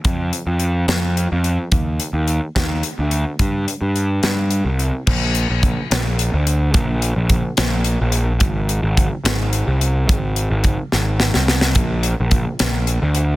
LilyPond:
<<
  \new Staff \with { instrumentName = "Picked electric bass" } { \clef bass \time 6/8 \key bes \mixolydian \tempo 4. = 72 f,8 r16 f,8. f,8. f,8 r16 | ees,8 r16 ees,8 r16 ees,8 r16 d,8 r16 | g,8 r16 g,8. g,8. c,8 r16 | bes,,8. bes,,8 r16 bes,,8. d,8. |
bes,,8. bes,,8 r16 bes,,8. bes,,8. | aes,,8. aes,,8 r16 aes,,8. c,8. | aes,,8. aes,,8 r16 aes,,8. c,8. | bes,,8. bes,,8 r16 bes,,8. d,8. | }
  \new DrumStaff \with { instrumentName = "Drums" } \drummode { \time 6/8 <hh bd>8 hh8 hh8 <hh sn>8 hh8 hh8 | <hh bd>8 hh8 hh8 <hh bd sn>8 hh8 hh8 | <hh bd>8 hh8 hh8 <hh sn>8 hh8 hh8 | <cymc bd>8 hh8 <hh bd>8 <hh sn>8 hh8 hh8 |
<hh bd>8 hh8 <hh bd>8 <hh sn>8 hh8 hh8 | <hh bd>8 hh8 <hh bd>8 <hh sn>8 hh8 hh8 | <hh bd>8 hh8 <hh bd>8 sn8 sn16 sn16 sn16 sn16 | <hh bd>8 hh8 <hh bd>8 <hh sn>8 hh8 hh8 | }
>>